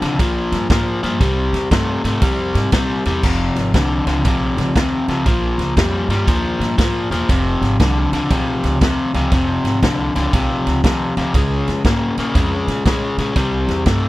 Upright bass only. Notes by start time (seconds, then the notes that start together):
0.02 C#2
0.19 A#1
0.52 G2
0.70 G#2
1.03 G2
1.21 C2
1.53 E2
1.71 G2
2.04 G#2
2.22 F2
2.55 G#2
2.72 A#2
3.06 E2
3.23 F1
3.56 G#1
3.74 C2
4.06 C#2
4.25 A#1
4.57 C#2
4.75 D#2
5.08 C#2
5.26 A#1
5.58 C#2
5.77 F2
6.08 G2
6.27 D#2
6.59 G2
6.78 G#2
7.10 E1
7.29 F1
7.61 G#1
7.80 C2
8.12 C#2
8.30 A#1
8.63 C#2
8.81 D#2
9.14 C#2
9.32 F1
9.64 G#1
9.82 C2
10.16 C#2
10.33 A#1
10.66 C#2
10.84 D#2
11.17 C#2
11.34 C#2
11.68 F2
11.85 G#2
12.17 A#2
12.35 F2
12.67 A#2
12.85 A#2
13.17 A#2
13.35 C2
13.68 E2
13.86 G2